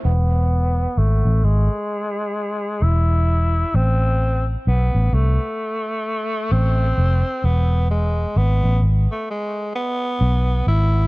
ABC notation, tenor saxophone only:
X:1
M:4/4
L:1/16
Q:"Swing 16ths" 1/4=65
K:Ephr
V:1 name="Tenor saxophone"
B,4 A,2 ^G,6 E4 | C3 z B,2 A,6 C4 | B,2 ^G,2 B,2 z A, G,2 B,4 E2 |]